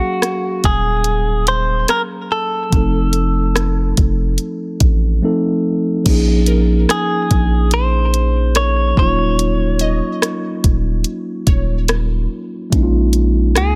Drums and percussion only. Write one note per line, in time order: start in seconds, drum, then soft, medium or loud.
0.22 cross-stick loud
0.22 closed hi-hat medium
0.64 kick medium
0.64 closed hi-hat medium
1.04 closed hi-hat medium
1.47 closed hi-hat medium
1.88 cross-stick loud
1.88 closed hi-hat medium
2.72 kick loud
2.72 closed hi-hat medium
3.13 closed hi-hat medium
3.56 cross-stick loud
3.56 closed hi-hat medium
3.97 kick medium
3.97 closed hi-hat medium
4.38 closed hi-hat medium
4.80 kick loud
4.80 closed hi-hat medium
6.06 kick loud
6.06 closed hi-hat medium
6.06 crash medium
6.46 closed hi-hat medium
6.89 cross-stick loud
6.89 closed hi-hat medium
7.31 kick medium
7.31 closed hi-hat medium
7.71 closed hi-hat medium
8.14 closed hi-hat medium
8.55 cross-stick loud
8.55 closed hi-hat medium
8.97 kick loud
9.39 closed hi-hat medium
9.79 closed hi-hat medium
10.22 cross-stick loud
10.22 closed hi-hat medium
10.64 kick medium
10.64 closed hi-hat medium
11.04 closed hi-hat medium
11.47 kick loud
11.47 closed hi-hat medium
11.88 cross-stick loud
11.88 closed hi-hat medium
12.72 kick loud
12.72 closed hi-hat medium
13.13 closed hi-hat medium
13.55 cross-stick loud
13.55 closed hi-hat medium